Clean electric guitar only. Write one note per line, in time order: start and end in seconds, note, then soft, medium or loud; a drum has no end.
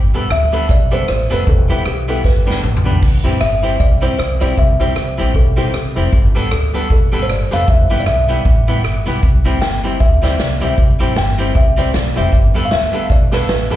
0.14 0.27 G3 medium
0.14 0.27 B3 medium
0.14 0.28 D4 medium
0.14 0.28 A4 medium
0.52 0.66 G3 medium
0.52 0.66 B3 medium
0.52 0.66 D4 medium
0.52 0.66 A4 medium
0.91 1.05 G3 medium
0.91 1.05 B3 medium
0.91 1.05 D4 medium
0.91 1.05 A4 medium
1.30 1.43 G3 medium
1.30 1.43 B3 medium
1.30 1.44 D4 loud
1.30 1.44 A4 medium
1.69 1.82 G3 medium
1.69 1.83 B3 medium
1.69 1.83 E4 loud
1.69 1.83 G4 medium
2.08 2.21 G3 medium
2.08 2.21 B3 medium
2.08 2.22 E4 medium
2.08 2.22 G4 medium
2.47 2.60 G3 medium
2.47 2.60 B3 medium
2.47 2.60 D4 loud
2.47 2.60 G4 medium
2.85 2.98 G3 medium
2.85 2.99 B3 medium
2.85 2.99 D4 medium
2.85 2.99 G4 medium
3.24 3.37 G3 medium
3.24 3.38 C4 medium
3.24 3.38 E4 loud
3.24 3.38 G4 medium
3.62 3.76 G3 medium
3.62 3.76 C4 medium
3.62 3.76 E4 medium
3.62 3.77 G4 medium
4.01 4.15 G3 medium
4.01 4.15 C4 loud
4.01 4.15 E4 medium
4.01 4.15 G4 medium
4.40 4.54 G3 medium
4.40 4.54 C4 medium
4.40 4.54 E4 medium
4.40 4.55 G4 medium
4.80 4.93 G3 medium
4.80 4.93 C4 medium
4.80 4.93 E4 medium
4.80 4.93 G4 medium
5.17 5.31 G3 medium
5.17 5.31 C4 medium
5.17 5.32 E4 medium
5.17 5.32 G4 loud
5.56 5.70 G3 medium
5.56 5.70 C4 medium
5.56 5.70 E4 loud
5.56 5.71 G4 medium
5.96 6.09 G3 medium
5.96 6.09 C4 medium
5.96 6.10 E4 medium
5.96 6.10 G4 medium
6.35 6.48 G3 medium
6.35 6.48 B3 medium
6.35 6.49 D4 loud
6.35 6.49 A4 loud
6.74 6.87 G3 medium
6.74 6.87 B3 medium
6.74 6.87 D4 loud
6.74 6.87 A4 medium
7.12 7.25 G3 medium
7.12 7.26 B3 medium
7.12 7.26 D4 medium
7.12 7.26 A4 loud
7.51 7.64 G3 medium
7.51 7.65 B3 medium
7.51 7.65 D4 medium
7.51 7.65 A4 loud
7.90 8.03 G3 medium
7.90 8.03 B3 loud
7.90 8.04 E4 loud
7.90 8.04 G4 loud
8.28 8.42 G3 medium
8.28 8.42 B3 medium
8.28 8.42 E4 medium
8.28 8.42 G4 medium
8.67 8.81 G3 medium
8.67 8.81 B3 medium
8.67 8.81 E4 medium
8.67 8.82 G4 medium
9.05 9.19 G3 medium
9.05 9.19 B3 medium
9.05 9.20 E4 medium
9.05 9.20 G4 medium
9.45 9.58 G3 medium
9.45 9.58 C4 loud
9.45 9.58 E4 medium
9.45 9.59 G4 loud
9.83 9.97 G3 medium
9.83 9.97 C4 medium
9.83 9.97 E4 medium
9.83 9.97 G4 medium
10.22 10.35 G3 medium
10.22 10.36 C4 medium
10.22 10.36 E4 medium
10.22 10.36 G4 medium
10.61 10.74 G3 medium
10.61 10.74 C4 medium
10.61 10.75 E4 medium
10.61 10.75 G4 medium
10.99 11.13 G3 medium
10.99 11.13 C4 medium
10.99 11.13 E4 loud
10.99 11.13 G4 loud
11.38 11.51 G3 medium
11.38 11.52 C4 medium
11.38 11.52 E4 loud
11.38 11.52 G4 medium
11.76 11.90 G3 medium
11.76 11.90 C4 medium
11.76 11.91 E4 medium
11.76 11.91 G4 medium
11.94 muted clean electric guitar stroke soft
12.16 12.29 G3 medium
12.16 12.30 C4 medium
12.16 12.30 E4 medium
12.16 12.30 G4 loud
12.54 12.68 G3 medium
12.54 12.68 B3 loud
12.54 12.68 D4 loud
12.54 12.69 A4 loud
12.92 13.06 G3 medium
12.92 13.06 B3 medium
12.92 13.07 D4 loud
12.92 13.07 A4 medium
13.32 13.45 G3 medium
13.32 13.46 B3 medium
13.32 13.46 D4 medium
13.32 13.46 A4 loud
13.71 13.76 G3 medium
13.71 13.76 B3 medium
13.71 13.76 D4 medium
13.71 13.76 A4 medium